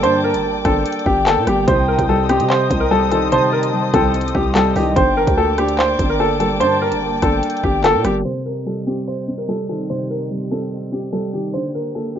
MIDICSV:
0, 0, Header, 1, 7, 480
1, 0, Start_track
1, 0, Tempo, 410959
1, 39, Time_signature, 4, 2, 24, 8
1, 14240, End_track
2, 0, Start_track
2, 0, Title_t, "Soft synth lead"
2, 0, Program_c, 0, 80
2, 35, Note_on_c, 0, 81, 98
2, 714, Note_off_c, 0, 81, 0
2, 759, Note_on_c, 0, 79, 90
2, 1912, Note_off_c, 0, 79, 0
2, 1957, Note_on_c, 0, 79, 108
2, 2871, Note_off_c, 0, 79, 0
2, 3879, Note_on_c, 0, 81, 108
2, 4556, Note_off_c, 0, 81, 0
2, 4601, Note_on_c, 0, 79, 92
2, 4828, Note_off_c, 0, 79, 0
2, 5559, Note_on_c, 0, 75, 93
2, 5787, Note_off_c, 0, 75, 0
2, 5800, Note_on_c, 0, 79, 104
2, 6713, Note_off_c, 0, 79, 0
2, 7716, Note_on_c, 0, 81, 98
2, 8394, Note_off_c, 0, 81, 0
2, 8440, Note_on_c, 0, 79, 91
2, 9593, Note_off_c, 0, 79, 0
2, 14240, End_track
3, 0, Start_track
3, 0, Title_t, "String section"
3, 0, Program_c, 1, 48
3, 0, Note_on_c, 1, 58, 85
3, 0, Note_on_c, 1, 74, 79
3, 0, Note_on_c, 1, 79, 79
3, 0, Note_on_c, 1, 86, 92
3, 1920, Note_off_c, 1, 58, 0
3, 1920, Note_off_c, 1, 74, 0
3, 1920, Note_off_c, 1, 86, 0
3, 1958, Note_on_c, 1, 75, 80
3, 1959, Note_on_c, 1, 72, 86
3, 1959, Note_on_c, 1, 87, 95
3, 5752, Note_off_c, 1, 79, 0
3, 5760, Note_off_c, 1, 75, 0
3, 5761, Note_off_c, 1, 72, 0
3, 5761, Note_off_c, 1, 87, 0
3, 5799, Note_on_c, 1, 74, 78
3, 5800, Note_on_c, 1, 58, 88
3, 5800, Note_on_c, 1, 79, 76
3, 5800, Note_on_c, 1, 86, 92
3, 9601, Note_off_c, 1, 58, 0
3, 9601, Note_off_c, 1, 74, 0
3, 9601, Note_off_c, 1, 79, 0
3, 9601, Note_off_c, 1, 86, 0
3, 9637, Note_on_c, 1, 60, 80
3, 9638, Note_on_c, 1, 67, 75
3, 9638, Note_on_c, 1, 75, 71
3, 9638, Note_on_c, 1, 79, 86
3, 13440, Note_off_c, 1, 60, 0
3, 13440, Note_off_c, 1, 75, 0
3, 13478, Note_on_c, 1, 74, 71
3, 13479, Note_on_c, 1, 58, 81
3, 14240, Note_off_c, 1, 58, 0
3, 14240, Note_off_c, 1, 67, 0
3, 14240, Note_off_c, 1, 74, 0
3, 14240, Note_off_c, 1, 79, 0
3, 14240, End_track
4, 0, Start_track
4, 0, Title_t, "Upright piano"
4, 0, Program_c, 2, 0
4, 37, Note_on_c, 2, 72, 110
4, 220, Note_off_c, 2, 72, 0
4, 280, Note_on_c, 2, 70, 82
4, 462, Note_off_c, 2, 70, 0
4, 758, Note_on_c, 2, 69, 81
4, 1210, Note_off_c, 2, 69, 0
4, 1239, Note_on_c, 2, 67, 73
4, 1422, Note_off_c, 2, 67, 0
4, 1480, Note_on_c, 2, 69, 97
4, 1662, Note_off_c, 2, 69, 0
4, 1727, Note_on_c, 2, 67, 74
4, 1907, Note_off_c, 2, 67, 0
4, 1957, Note_on_c, 2, 72, 98
4, 2140, Note_off_c, 2, 72, 0
4, 2197, Note_on_c, 2, 70, 76
4, 2381, Note_off_c, 2, 70, 0
4, 2441, Note_on_c, 2, 69, 74
4, 2623, Note_off_c, 2, 69, 0
4, 2679, Note_on_c, 2, 67, 84
4, 2862, Note_off_c, 2, 67, 0
4, 2918, Note_on_c, 2, 72, 98
4, 3257, Note_off_c, 2, 72, 0
4, 3272, Note_on_c, 2, 70, 79
4, 3366, Note_off_c, 2, 70, 0
4, 3400, Note_on_c, 2, 69, 89
4, 3582, Note_off_c, 2, 69, 0
4, 3638, Note_on_c, 2, 69, 80
4, 3821, Note_off_c, 2, 69, 0
4, 3880, Note_on_c, 2, 72, 107
4, 4062, Note_off_c, 2, 72, 0
4, 4118, Note_on_c, 2, 70, 85
4, 4301, Note_off_c, 2, 70, 0
4, 4598, Note_on_c, 2, 69, 88
4, 5050, Note_off_c, 2, 69, 0
4, 5080, Note_on_c, 2, 67, 74
4, 5262, Note_off_c, 2, 67, 0
4, 5317, Note_on_c, 2, 69, 92
4, 5500, Note_off_c, 2, 69, 0
4, 5560, Note_on_c, 2, 67, 74
4, 5742, Note_off_c, 2, 67, 0
4, 5794, Note_on_c, 2, 72, 105
4, 5979, Note_off_c, 2, 72, 0
4, 6039, Note_on_c, 2, 70, 82
4, 6222, Note_off_c, 2, 70, 0
4, 6279, Note_on_c, 2, 69, 84
4, 6461, Note_off_c, 2, 69, 0
4, 6518, Note_on_c, 2, 67, 81
4, 6701, Note_off_c, 2, 67, 0
4, 6758, Note_on_c, 2, 72, 100
4, 7097, Note_off_c, 2, 72, 0
4, 7119, Note_on_c, 2, 70, 79
4, 7210, Note_off_c, 2, 70, 0
4, 7241, Note_on_c, 2, 69, 84
4, 7423, Note_off_c, 2, 69, 0
4, 7476, Note_on_c, 2, 69, 76
4, 7660, Note_off_c, 2, 69, 0
4, 7713, Note_on_c, 2, 72, 108
4, 7898, Note_off_c, 2, 72, 0
4, 7961, Note_on_c, 2, 70, 81
4, 8143, Note_off_c, 2, 70, 0
4, 8436, Note_on_c, 2, 69, 81
4, 8888, Note_off_c, 2, 69, 0
4, 8916, Note_on_c, 2, 67, 69
4, 9100, Note_off_c, 2, 67, 0
4, 9159, Note_on_c, 2, 69, 98
4, 9341, Note_off_c, 2, 69, 0
4, 9403, Note_on_c, 2, 67, 74
4, 9584, Note_off_c, 2, 67, 0
4, 9635, Note_on_c, 2, 72, 96
4, 9819, Note_off_c, 2, 72, 0
4, 9876, Note_on_c, 2, 70, 74
4, 10060, Note_off_c, 2, 70, 0
4, 10121, Note_on_c, 2, 69, 72
4, 10303, Note_off_c, 2, 69, 0
4, 10358, Note_on_c, 2, 67, 78
4, 10541, Note_off_c, 2, 67, 0
4, 10601, Note_on_c, 2, 72, 95
4, 10938, Note_off_c, 2, 72, 0
4, 10954, Note_on_c, 2, 70, 75
4, 11047, Note_off_c, 2, 70, 0
4, 11081, Note_on_c, 2, 69, 87
4, 11263, Note_off_c, 2, 69, 0
4, 11319, Note_on_c, 2, 69, 75
4, 11502, Note_off_c, 2, 69, 0
4, 11561, Note_on_c, 2, 72, 100
4, 11743, Note_off_c, 2, 72, 0
4, 11799, Note_on_c, 2, 70, 81
4, 11982, Note_off_c, 2, 70, 0
4, 12279, Note_on_c, 2, 69, 82
4, 12730, Note_off_c, 2, 69, 0
4, 12758, Note_on_c, 2, 67, 71
4, 12941, Note_off_c, 2, 67, 0
4, 12994, Note_on_c, 2, 69, 87
4, 13179, Note_off_c, 2, 69, 0
4, 13239, Note_on_c, 2, 67, 73
4, 13421, Note_off_c, 2, 67, 0
4, 13474, Note_on_c, 2, 72, 96
4, 13659, Note_off_c, 2, 72, 0
4, 13718, Note_on_c, 2, 70, 78
4, 13901, Note_off_c, 2, 70, 0
4, 13958, Note_on_c, 2, 69, 79
4, 14141, Note_off_c, 2, 69, 0
4, 14197, Note_on_c, 2, 67, 78
4, 14240, Note_off_c, 2, 67, 0
4, 14240, End_track
5, 0, Start_track
5, 0, Title_t, "Grand piano"
5, 0, Program_c, 3, 0
5, 0, Control_c, 3, 64, 127
5, 0, Note_on_c, 3, 50, 97
5, 0, Note_on_c, 3, 55, 81
5, 0, Note_on_c, 3, 58, 100
5, 0, Note_on_c, 3, 62, 87
5, 38, Note_off_c, 3, 50, 0
5, 38, Note_on_c, 3, 50, 93
5, 500, Note_off_c, 3, 58, 0
5, 518, Note_on_c, 3, 58, 84
5, 519, Note_off_c, 3, 62, 0
5, 758, Note_on_c, 3, 62, 97
5, 998, Note_off_c, 3, 55, 0
5, 1220, Note_off_c, 3, 62, 0
5, 1238, Note_on_c, 3, 62, 82
5, 1239, Note_off_c, 3, 50, 0
5, 1462, Note_off_c, 3, 58, 0
5, 1480, Note_on_c, 3, 58, 92
5, 1720, Note_on_c, 3, 55, 84
5, 1958, Note_off_c, 3, 62, 0
5, 1958, Note_on_c, 3, 48, 94
5, 1959, Note_off_c, 3, 55, 0
5, 1959, Note_off_c, 3, 58, 0
5, 1972, Control_c, 3, 64, 0
5, 2205, Control_c, 3, 64, 127
5, 2440, Note_on_c, 3, 55, 83
5, 2680, Note_on_c, 3, 60, 102
5, 3142, Note_off_c, 3, 60, 0
5, 3159, Note_off_c, 3, 48, 0
5, 3160, Note_on_c, 3, 60, 77
5, 3381, Note_off_c, 3, 55, 0
5, 3399, Note_on_c, 3, 55, 90
5, 3639, Note_on_c, 3, 51, 85
5, 3880, Note_on_c, 3, 48, 94
5, 4343, Note_off_c, 3, 55, 0
5, 4359, Note_off_c, 3, 60, 0
5, 4360, Note_on_c, 3, 55, 78
5, 4599, Note_on_c, 3, 60, 95
5, 4839, Note_off_c, 3, 51, 0
5, 5062, Note_off_c, 3, 60, 0
5, 5079, Note_off_c, 3, 48, 0
5, 5079, Note_on_c, 3, 60, 83
5, 5301, Note_off_c, 3, 55, 0
5, 5318, Note_on_c, 3, 55, 100
5, 5558, Note_on_c, 3, 51, 81
5, 5798, Note_off_c, 3, 51, 0
5, 5798, Note_on_c, 3, 50, 98
5, 5799, Note_off_c, 3, 55, 0
5, 5799, Note_off_c, 3, 60, 0
5, 5814, Control_c, 3, 64, 0
5, 6023, Control_c, 3, 64, 127
5, 6279, Note_on_c, 3, 58, 84
5, 6517, Note_on_c, 3, 62, 96
5, 6981, Note_off_c, 3, 62, 0
5, 6999, Note_off_c, 3, 50, 0
5, 6999, Note_on_c, 3, 62, 86
5, 7221, Note_off_c, 3, 58, 0
5, 7239, Note_on_c, 3, 58, 102
5, 7480, Note_on_c, 3, 55, 81
5, 7719, Note_on_c, 3, 50, 94
5, 8182, Note_off_c, 3, 58, 0
5, 8199, Note_off_c, 3, 62, 0
5, 8199, Note_on_c, 3, 58, 84
5, 8439, Note_on_c, 3, 62, 99
5, 8679, Note_off_c, 3, 55, 0
5, 8901, Note_off_c, 3, 62, 0
5, 8918, Note_on_c, 3, 62, 83
5, 8919, Note_off_c, 3, 50, 0
5, 9141, Note_off_c, 3, 58, 0
5, 9159, Note_on_c, 3, 58, 92
5, 9399, Note_on_c, 3, 55, 84
5, 9637, Note_on_c, 3, 48, 87
5, 9639, Note_off_c, 3, 55, 0
5, 9639, Note_off_c, 3, 58, 0
5, 9639, Note_off_c, 3, 62, 0
5, 9654, Control_c, 3, 64, 0
5, 9828, Control_c, 3, 64, 127
5, 10119, Note_on_c, 3, 55, 77
5, 10358, Note_on_c, 3, 60, 100
5, 10821, Note_off_c, 3, 60, 0
5, 10838, Note_off_c, 3, 48, 0
5, 10839, Note_on_c, 3, 60, 73
5, 11060, Note_off_c, 3, 55, 0
5, 11078, Note_on_c, 3, 55, 88
5, 11319, Note_on_c, 3, 51, 75
5, 11558, Note_on_c, 3, 48, 84
5, 12022, Note_off_c, 3, 55, 0
5, 12039, Note_off_c, 3, 60, 0
5, 12040, Note_on_c, 3, 55, 75
5, 12279, Note_on_c, 3, 60, 90
5, 12519, Note_off_c, 3, 51, 0
5, 12742, Note_off_c, 3, 60, 0
5, 12759, Note_off_c, 3, 48, 0
5, 12759, Note_on_c, 3, 60, 80
5, 12982, Note_off_c, 3, 55, 0
5, 12999, Note_on_c, 3, 55, 96
5, 13239, Note_on_c, 3, 51, 76
5, 13479, Note_off_c, 3, 51, 0
5, 13479, Note_off_c, 3, 55, 0
5, 13479, Note_off_c, 3, 60, 0
5, 13481, Note_on_c, 3, 50, 94
5, 13493, Control_c, 3, 64, 0
5, 13720, Control_c, 3, 64, 127
5, 13959, Note_on_c, 3, 58, 81
5, 14200, Note_on_c, 3, 62, 90
5, 14240, Note_off_c, 3, 50, 0
5, 14240, Note_off_c, 3, 58, 0
5, 14240, Note_off_c, 3, 62, 0
5, 14240, End_track
6, 0, Start_track
6, 0, Title_t, "808-style bass"
6, 0, Program_c, 4, 38
6, 38, Note_on_c, 4, 43, 103
6, 399, Note_on_c, 4, 31, 99
6, 416, Note_off_c, 4, 43, 0
6, 741, Note_off_c, 4, 31, 0
6, 759, Note_on_c, 4, 31, 104
6, 989, Note_off_c, 4, 31, 0
6, 1239, Note_on_c, 4, 31, 109
6, 1599, Note_on_c, 4, 46, 99
6, 1617, Note_off_c, 4, 31, 0
6, 1713, Note_off_c, 4, 46, 0
6, 1720, Note_on_c, 4, 31, 110
6, 1950, Note_off_c, 4, 31, 0
6, 1959, Note_on_c, 4, 36, 109
6, 2304, Note_off_c, 4, 36, 0
6, 2318, Note_on_c, 4, 36, 106
6, 2798, Note_on_c, 4, 48, 105
6, 2816, Note_off_c, 4, 36, 0
6, 3141, Note_off_c, 4, 48, 0
6, 3159, Note_on_c, 4, 36, 102
6, 3965, Note_off_c, 4, 36, 0
6, 4598, Note_on_c, 4, 36, 105
6, 5059, Note_off_c, 4, 36, 0
6, 5078, Note_on_c, 4, 36, 103
6, 5539, Note_off_c, 4, 36, 0
6, 5558, Note_on_c, 4, 36, 105
6, 5789, Note_off_c, 4, 36, 0
6, 5798, Note_on_c, 4, 31, 109
6, 6144, Note_off_c, 4, 31, 0
6, 6158, Note_on_c, 4, 38, 103
6, 6965, Note_off_c, 4, 38, 0
6, 6998, Note_on_c, 4, 31, 105
6, 7718, Note_on_c, 4, 43, 100
6, 7735, Note_off_c, 4, 31, 0
6, 8079, Note_on_c, 4, 31, 101
6, 8097, Note_off_c, 4, 43, 0
6, 8421, Note_off_c, 4, 31, 0
6, 8438, Note_on_c, 4, 31, 107
6, 8669, Note_off_c, 4, 31, 0
6, 8918, Note_on_c, 4, 31, 103
6, 9280, Note_on_c, 4, 46, 99
6, 9297, Note_off_c, 4, 31, 0
6, 9393, Note_off_c, 4, 46, 0
6, 9398, Note_on_c, 4, 31, 109
6, 9629, Note_off_c, 4, 31, 0
6, 14240, End_track
7, 0, Start_track
7, 0, Title_t, "Drums"
7, 41, Note_on_c, 9, 42, 94
7, 158, Note_off_c, 9, 42, 0
7, 401, Note_on_c, 9, 42, 79
7, 517, Note_off_c, 9, 42, 0
7, 758, Note_on_c, 9, 42, 77
7, 759, Note_on_c, 9, 36, 94
7, 759, Note_on_c, 9, 37, 100
7, 875, Note_off_c, 9, 42, 0
7, 876, Note_off_c, 9, 36, 0
7, 876, Note_off_c, 9, 37, 0
7, 999, Note_on_c, 9, 42, 85
7, 1079, Note_off_c, 9, 42, 0
7, 1079, Note_on_c, 9, 42, 65
7, 1159, Note_off_c, 9, 42, 0
7, 1159, Note_on_c, 9, 42, 49
7, 1239, Note_on_c, 9, 36, 90
7, 1276, Note_off_c, 9, 42, 0
7, 1356, Note_off_c, 9, 36, 0
7, 1478, Note_on_c, 9, 39, 113
7, 1483, Note_on_c, 9, 42, 76
7, 1594, Note_off_c, 9, 39, 0
7, 1600, Note_off_c, 9, 42, 0
7, 1718, Note_on_c, 9, 37, 95
7, 1718, Note_on_c, 9, 42, 87
7, 1835, Note_off_c, 9, 37, 0
7, 1835, Note_off_c, 9, 42, 0
7, 1958, Note_on_c, 9, 42, 92
7, 1959, Note_on_c, 9, 36, 127
7, 2075, Note_off_c, 9, 42, 0
7, 2076, Note_off_c, 9, 36, 0
7, 2319, Note_on_c, 9, 36, 94
7, 2320, Note_on_c, 9, 42, 79
7, 2436, Note_off_c, 9, 36, 0
7, 2437, Note_off_c, 9, 42, 0
7, 2679, Note_on_c, 9, 42, 74
7, 2680, Note_on_c, 9, 37, 96
7, 2796, Note_off_c, 9, 42, 0
7, 2797, Note_off_c, 9, 37, 0
7, 2801, Note_on_c, 9, 42, 80
7, 2918, Note_off_c, 9, 42, 0
7, 2920, Note_on_c, 9, 39, 110
7, 3036, Note_off_c, 9, 39, 0
7, 3159, Note_on_c, 9, 36, 90
7, 3162, Note_on_c, 9, 42, 94
7, 3276, Note_off_c, 9, 36, 0
7, 3278, Note_off_c, 9, 42, 0
7, 3638, Note_on_c, 9, 42, 86
7, 3755, Note_off_c, 9, 42, 0
7, 3878, Note_on_c, 9, 42, 93
7, 3995, Note_off_c, 9, 42, 0
7, 4240, Note_on_c, 9, 42, 79
7, 4357, Note_off_c, 9, 42, 0
7, 4597, Note_on_c, 9, 42, 82
7, 4598, Note_on_c, 9, 36, 93
7, 4598, Note_on_c, 9, 37, 100
7, 4714, Note_off_c, 9, 42, 0
7, 4715, Note_off_c, 9, 36, 0
7, 4715, Note_off_c, 9, 37, 0
7, 4838, Note_on_c, 9, 42, 68
7, 4919, Note_off_c, 9, 42, 0
7, 4919, Note_on_c, 9, 42, 69
7, 4998, Note_off_c, 9, 42, 0
7, 4998, Note_on_c, 9, 42, 69
7, 5078, Note_on_c, 9, 36, 90
7, 5115, Note_off_c, 9, 42, 0
7, 5195, Note_off_c, 9, 36, 0
7, 5316, Note_on_c, 9, 39, 115
7, 5322, Note_on_c, 9, 42, 77
7, 5433, Note_off_c, 9, 39, 0
7, 5438, Note_off_c, 9, 42, 0
7, 5557, Note_on_c, 9, 46, 64
7, 5673, Note_off_c, 9, 46, 0
7, 5798, Note_on_c, 9, 36, 125
7, 5798, Note_on_c, 9, 42, 91
7, 5915, Note_off_c, 9, 36, 0
7, 5915, Note_off_c, 9, 42, 0
7, 6158, Note_on_c, 9, 36, 96
7, 6159, Note_on_c, 9, 42, 80
7, 6275, Note_off_c, 9, 36, 0
7, 6276, Note_off_c, 9, 42, 0
7, 6517, Note_on_c, 9, 42, 73
7, 6518, Note_on_c, 9, 37, 101
7, 6634, Note_off_c, 9, 42, 0
7, 6635, Note_off_c, 9, 37, 0
7, 6639, Note_on_c, 9, 42, 80
7, 6756, Note_off_c, 9, 42, 0
7, 6758, Note_on_c, 9, 39, 112
7, 6875, Note_off_c, 9, 39, 0
7, 6998, Note_on_c, 9, 36, 90
7, 6999, Note_on_c, 9, 42, 94
7, 7115, Note_off_c, 9, 36, 0
7, 7116, Note_off_c, 9, 42, 0
7, 7477, Note_on_c, 9, 42, 87
7, 7593, Note_off_c, 9, 42, 0
7, 7718, Note_on_c, 9, 42, 91
7, 7834, Note_off_c, 9, 42, 0
7, 8079, Note_on_c, 9, 42, 80
7, 8196, Note_off_c, 9, 42, 0
7, 8437, Note_on_c, 9, 42, 80
7, 8438, Note_on_c, 9, 36, 93
7, 8438, Note_on_c, 9, 37, 99
7, 8553, Note_off_c, 9, 42, 0
7, 8554, Note_off_c, 9, 37, 0
7, 8555, Note_off_c, 9, 36, 0
7, 8677, Note_on_c, 9, 42, 82
7, 8758, Note_off_c, 9, 42, 0
7, 8758, Note_on_c, 9, 42, 65
7, 8838, Note_off_c, 9, 42, 0
7, 8838, Note_on_c, 9, 42, 50
7, 8918, Note_on_c, 9, 36, 88
7, 8955, Note_off_c, 9, 42, 0
7, 9035, Note_off_c, 9, 36, 0
7, 9157, Note_on_c, 9, 39, 120
7, 9162, Note_on_c, 9, 42, 76
7, 9273, Note_off_c, 9, 39, 0
7, 9279, Note_off_c, 9, 42, 0
7, 9397, Note_on_c, 9, 37, 96
7, 9397, Note_on_c, 9, 42, 85
7, 9514, Note_off_c, 9, 37, 0
7, 9514, Note_off_c, 9, 42, 0
7, 14240, End_track
0, 0, End_of_file